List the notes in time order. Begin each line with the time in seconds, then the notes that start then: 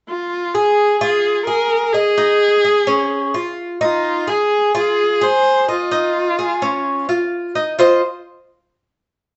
0.09 F4
0.55 G#4
1.01 F4 G#4
1.46 G#4 A#4
1.93 G#4 D#5
2.18 D#4
2.64 G#4
2.87 C#4
3.34 F4
3.81 D#4 F4
4.27 G#4
4.75 F4 G#4
5.21 G#4 C5
5.69 F4 D#5
5.92 D#4
6.39 G#4
6.62 C#4
7.09 F4
7.55 D#4
7.79 F4 C5 D#5